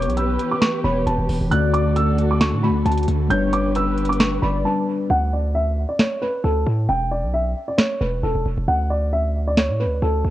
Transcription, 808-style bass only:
0.07 B1
0.84 E1
1.07 E1
1.19 E1
1.29 E1
1.41 E1
1.51 D2
2.53 A2
2.69 D2
2.86 D2
3.08 D2
3.30 G1
4.42 G1
5.10 D2
6.44 D2
6.66 A2
6.89 E1
7.23 B1
8.01 E1
8.23 E1
8.35 E1
8.46 E1
8.57 E1
8.68 D2
9.69 A2
9.86 D2
10.02 D2
10.25 D2

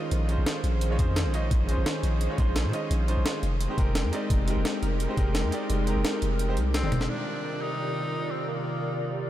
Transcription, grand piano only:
Already playing: G#3 C#4 D#4 F4 D#5
0.26 G#3 C#4 D#4
0.31 F4 C5
0.89 G#3 C#4 D#4 F4 C#5
0.97 G#3 C#4 D#4 F4 C5
1.32 G#3 C#4 D#4 F4 D#5
1.66 G#3 C#4 D#4
1.70 F4 C5
2.28 G#3 C#4 D#4 F4 C#5
2.37 G#3 C#4 D#4 F4 C5
2.72 G#3 C#4 D#4 F4 D#5
3.07 G#3 C#4 D#4 F4 C5
3.68 G#3 C4 D#4 G4 C5
3.77 G#3 C4 D#4 G4 A#4
4.12 G#3 C4 D#4 G4 D5
4.45 G#3 C4 D#4
4.49 G4 A#4
5.08 G#3 C4 D#4 G4 C5
5.16 G#3 C4 D#4 G4 A#4
5.51 G#3 C4 D#4 G4 D5
5.84 G#3 C4 D#4
5.89 G4 A#4
6.47 G#3 C4 D#4 G4 C5
6.82 G#3 C4 D#4 G4 D5
7.07 C3 D#3 G3 D5
7.11 F4 A#4

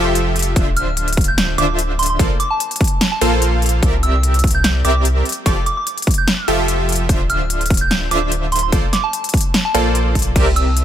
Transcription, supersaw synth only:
Already playing: F3 F4 G4 A4 E5
0.56 D3 D4 F4 C5 E5
1.58 D3 D4 F4 C5 E5
2.19 A#3 F4 A4 C5 D5
3.21 A#3 F4 A4 C5 F5
3.83 C4 G4 A#4 D5 E5
4.85 C4 G4 A#4 D5 E5
5.46 F3 F4 G4 A4 D5
6.48 F3 F4 G4 A4 E5
7.09 D3 D4 F4 C5 E5
8.11 D3 D4 F4 C5 E5
8.72 A#3 F4 A4 C5 D5
9.74 A#3 F4 A4 C5 D5
10.36 C4 G4 A#4 D5 E5

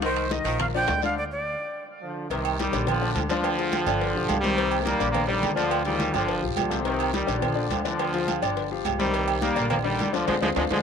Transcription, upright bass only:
Already playing: C2
0.44 A#1
0.88 D2
2.30 C2
2.73 A#1
3.15 D2
3.86 G1
4.15 B1
4.29 C2
5.00 A#1
5.43 D2
6.14 G1
6.42 B1
6.56 C2
7.27 A#1
7.70 D2
8.42 G1
8.85 C2
9.57 A#1
9.99 D2
10.28 D2
10.41 D2
10.56 D2
10.70 D2

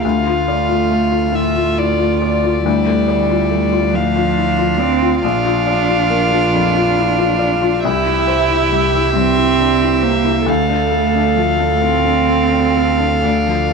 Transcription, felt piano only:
0.05 D2
0.27 F4
0.48 D5
0.69 F4
0.91 A3
1.12 F4
1.32 A2
1.55 F4
1.77 E4
1.99 F4
2.22 D5
2.44 F4
2.66 D2
2.87 A3
3.08 D5
3.30 F4
3.50 A3
3.72 F4
3.95 A2
4.16 F4
4.38 E4
4.59 F4
4.80 D5
5.02 F4
5.24 A#1
5.46 F4
5.67 D5
5.89 F4
6.10 A#3
6.31 F4
6.54 F2
6.75 F4
6.97 E4
7.18 F4
7.39 D5
7.61 F4
7.85 C2
8.06 E4
8.27 C5
8.50 E4
8.72 G3
8.95 E4
9.15 G2
9.37 E4
9.59 D4
9.81 E4
10.03 C5
10.25 E4
10.46 D2
10.69 D4
10.92 A4
11.15 D4
11.36 F3
11.60 D4
11.81 A2
12.04 D4
12.28 C4
12.52 D4
12.75 A4
12.98 D4
13.23 D2
13.47 F3
13.70 A4

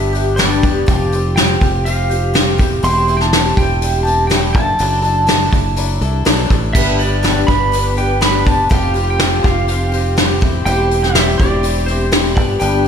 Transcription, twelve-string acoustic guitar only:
Already playing: G3 B3 D4 G4
0.13 G3 B3 D4 G4
0.37 G2 D3 G3 B3 D4 G4
0.62 G3 B3 D4 G4
0.86 F3 C4 F4 G4
1.12 C4 F4 G4
1.37 F3 C4 F4 G4
1.61 C4 F4 G4
1.86 F3 C4 F4 G4
2.09 C4 F4 G4
2.34 F3 C4 F4 G4
2.58 C4 E4 G4
2.83 E3 G3 C4 E4 G4
3.08 C4 E4 G4
3.33 E3 G3 C4 E4 G4
3.58 C4 E4 G4
3.82 G3 C4 E4 G4
4.05 C4 E4 G4
4.30 E3 G3 C4 E4 G4
4.54 D4 E4 A4
4.79 F#3 D4 E4 A4
5.02 D4 E4 A4
5.27 F#3 D4 E4 A4
5.52 D4 E4 A4
5.76 F#3 D4 E4 A4
6.01 D4 E4 A4
6.25 F#3 D4 E4 A4
6.50 D4 E4 A4
6.75 G2 D3 G3 B3 D4 B4
6.99 G3 B3 D4 B4
7.23 G2 D3 G3 B3 D4 B4
7.47 G3 B3 D4 B4
7.72 G3 B3 D4 B4
7.97 G3 B3 D4 B4
8.21 G2 D3 G3 B3 D4 B4
8.45 G3 B3 D4 B4
8.69 F3 C4 F4 G4
8.94 C4 F4 G4
9.20 F3 C4 F4 G4
9.43 C4 F4 G4
9.68 F3 C4 F4 G4
9.92 C4 F4 G4
10.17 F3 C4 F4 G4
10.41 C4 E4 G4
10.66 E3 G3 C4 E4 G4
10.92 C4 E4 G4
11.15 E3 G3 C4 E4 G4
11.40 C4 E4 G4
11.63 G3 C4 E4 G4
11.88 C4 E4 G4
12.12 E3 G3 C4 E4 G4
12.36 G3 B3 D4 G4
12.60 G2 D3 G3 B3 D4 G4
12.85 G4

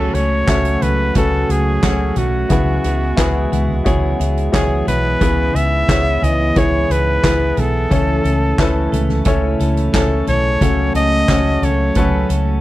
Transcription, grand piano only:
Already playing: C#3 C#4 F#4 A4 C#5
0.47 C#4 F#4 A4 E5
1.15 C#4 F#4 A4 B4
1.83 A3 C#4 F#4 C#5
2.49 C#3 E4 F#4 G#4 B4
3.17 E4 F#4 G#4 B4
3.84 E4 F#4 G#4 C#5
4.52 E4 F#4 G#4 C#5
5.20 C#3 B3 E4 G#4 B4
5.89 B3 E4 G#4 C#5
6.56 B3 E4 G#4 C#5
7.23 B3 E4 G#4 B4
7.91 C#3 C#4 E4 A4 C#5
8.59 C#4 E4 A4 B4
9.26 C#4 E4 A4 C#5
9.94 C#4 E4 A4 C#5
10.61 C#3 C#4 F#4 A4 C#5
11.29 C#4 F#4 A4 C#5
11.97 C#4 F#4 A4 C#5

